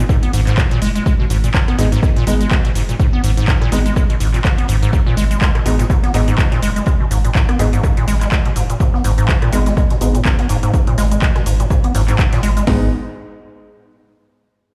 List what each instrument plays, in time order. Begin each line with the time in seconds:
0.09 acid bass G#2, kick, cross-stick, closed hi-hat, shaker
0.23 acid bass B3, closed hi-hat
0.33 sub bass G#1, acid bass G#2, closed hi-hat, open hi-hat, shaker
0.47 acid bass G#2, snare, clap, closed hi-hat, shaker
0.58 acid bass G#2, kick, snare, clap, closed hi-hat, shaker
0.71 acid bass A#2, closed hi-hat
0.81 sub bass F#1, acid bass G#3, closed hi-hat, open hi-hat, shaker
0.95 acid bass G#3, closed hi-hat, shaker
1.06 acid bass G#3, kick, closed hi-hat, shaker
1.20 acid bass B2, snare
1.29 sub bass G#1, acid bass G#2, snare, closed hi-hat, open hi-hat, shaker
1.44 acid bass A#2, closed hi-hat, shaker
1.54 acid bass G#2, kick, snare, clap, closed hi-hat, shaker
1.68 acid bass B3, cross-stick, closed hi-hat
1.78 sub bass G#1, acid bass G#2, grand piano G#3 B3 D#4, closed hi-hat, open hi-hat, shaker
1.91 acid bass G#2, snare, closed hi-hat, shaker
2.03 acid bass G#2, kick, cross-stick, closed hi-hat, shaker
2.16 acid bass A#2, snare, closed hi-hat
2.27 sub bass G#1, acid bass G#3, grand piano G#3 B3 D#4, closed hi-hat, open hi-hat, shaker
2.41 acid bass G#3, closed hi-hat, shaker
2.51 acid bass G#3, kick, snare, clap, closed hi-hat, shaker
2.65 acid bass B2, snare, closed hi-hat
2.75 sub bass F#1, acid bass G#2, closed hi-hat, open hi-hat, shaker
2.89 acid bass A#2, closed hi-hat, shaker
2.99 acid bass G#2, kick, closed hi-hat, shaker
3.13 acid bass B3
3.24 sub bass G#1, acid bass G#2, closed hi-hat, open hi-hat, shaker
3.37 acid bass G#2, closed hi-hat, shaker
3.48 kick, snare, clap, closed hi-hat, shaker
3.61 acid bass A#2, cross-stick, closed hi-hat
3.72 sub bass G#1, grand piano G#3 B3 D#4, acid bass G#3, closed hi-hat, open hi-hat, shaker
3.86 acid bass G#3, closed hi-hat, shaker
3.96 acid bass G#3, kick, cross-stick, closed hi-hat, shaker
4.10 acid bass B2, closed hi-hat
4.20 sub bass G#1, acid bass G#2, closed hi-hat, open hi-hat, shaker
4.34 acid bass A#2, snare, clap, closed hi-hat, shaker
4.44 acid bass G#2, kick, snare, clap, closed hi-hat, shaker
4.58 acid bass B3, closed hi-hat
4.68 sub bass G#1, acid bass G#2, closed hi-hat, open hi-hat, shaker
4.82 acid bass G#2, closed hi-hat, shaker
4.93 acid bass G#2, kick, closed hi-hat, shaker
5.06 acid bass A#2, snare
5.17 sub bass G#1, acid bass G#3, snare, closed hi-hat, open hi-hat, shaker
5.31 acid bass G#3, closed hi-hat, shaker
5.41 acid bass G#3, kick, snare, clap, closed hi-hat, shaker
5.55 acid bass B2, cross-stick, closed hi-hat
5.66 sub bass G#1, acid bass G#2, grand piano G#3 B3 D#4, closed hi-hat, open hi-hat, shaker
5.79 acid bass A#2, snare, closed hi-hat, shaker
5.90 acid bass G#2, kick, cross-stick, closed hi-hat, shaker
6.03 acid bass B3, snare, closed hi-hat
6.14 sub bass G#1, acid bass G#2, grand piano G#3 B3 D#4, closed hi-hat, open hi-hat, shaker
6.28 acid bass G#2, closed hi-hat, shaker
6.38 acid bass G#2, kick, snare, clap, closed hi-hat, shaker
6.51 acid bass A#2, snare, closed hi-hat
6.62 sub bass F#1, acid bass G#3, closed hi-hat, open hi-hat, shaker
6.76 acid bass G#3, closed hi-hat, shaker
6.86 acid bass G#3, kick, closed hi-hat, shaker
7.00 acid bass B2
7.11 sub bass G#1, acid bass G#2, closed hi-hat, open hi-hat, shaker
7.24 acid bass A#2, closed hi-hat, shaker
7.35 acid bass G#2, kick, snare, clap, closed hi-hat, shaker
7.49 acid bass B3, cross-stick, closed hi-hat
7.59 sub bass G#1, acid bass G#2, grand piano G#3 B3 D#4, closed hi-hat, open hi-hat, shaker
7.73 acid bass G#2, closed hi-hat, shaker
7.83 acid bass G#2, kick, cross-stick, closed hi-hat, shaker
7.97 acid bass A#2, closed hi-hat
8.07 sub bass G#1, acid bass G#3, closed hi-hat, open hi-hat, shaker
8.21 acid bass G#3, snare, clap, closed hi-hat, shaker
8.32 acid bass G#3, kick, snare, clap, closed hi-hat, shaker
8.45 acid bass B2, closed hi-hat
8.56 sub bass F#1, acid bass G#2, closed hi-hat, open hi-hat, shaker
8.70 acid bass A#2, closed hi-hat, shaker
8.80 acid bass G#2, kick, closed hi-hat, shaker
8.94 acid bass B3, snare
9.04 sub bass G#1, acid bass G#2, snare, closed hi-hat, open hi-hat, shaker
9.18 acid bass G#2, closed hi-hat, shaker
9.28 acid bass G#2, kick, snare, clap, closed hi-hat, shaker
9.42 acid bass A#2, cross-stick, closed hi-hat
9.53 sub bass G#1, grand piano G#3 B3 D#4, acid bass G#3, closed hi-hat, open hi-hat, shaker
9.66 acid bass G#3, snare, closed hi-hat, shaker
9.77 acid bass G#3, kick, cross-stick, closed hi-hat, shaker
9.90 acid bass B2, snare, closed hi-hat
10.01 sub bass G#1, acid bass G#2, grand piano G#3 B3 D#4, closed hi-hat, open hi-hat, shaker
10.15 acid bass A#2, closed hi-hat, shaker
10.25 acid bass G#2, kick, snare, clap, closed hi-hat, shaker
10.39 acid bass B3, snare, closed hi-hat
10.49 sub bass F#1, acid bass G#2, closed hi-hat, open hi-hat, shaker
10.63 acid bass G#2, closed hi-hat, shaker
10.73 acid bass G#2, kick, closed hi-hat, shaker
10.87 acid bass A#2, closed hi-hat
10.98 sub bass G#1, acid bass G#3, snare, closed hi-hat, open hi-hat, shaker
11.11 acid bass G#3, closed hi-hat, shaker
11.22 acid bass G#3, kick, clap, closed hi-hat, shaker
11.35 acid bass B2, cross-stick, snare, closed hi-hat
11.46 sub bass G#1, acid bass G#2, closed hi-hat, open hi-hat, shaker
11.60 acid bass A#2, closed hi-hat, shaker
11.70 acid bass G#2, kick, cross-stick, closed hi-hat, shaker
11.84 acid bass B3, closed hi-hat
11.95 sub bass G#1, acid bass G#2, snare, closed hi-hat, open hi-hat, shaker
12.08 acid bass G#2, snare, clap, closed hi-hat, shaker
12.19 acid bass G#2, kick, clap, closed hi-hat, shaker
12.32 acid bass A#2, snare, closed hi-hat
12.43 sub bass G#1, acid bass G#3, snare, open hi-hat, shaker
12.57 acid bass G#3, closed hi-hat, shaker
12.67 sub bass G#1, acid bass G#2, grand piano G#3 B3 D#4, kick, snare, open hi-hat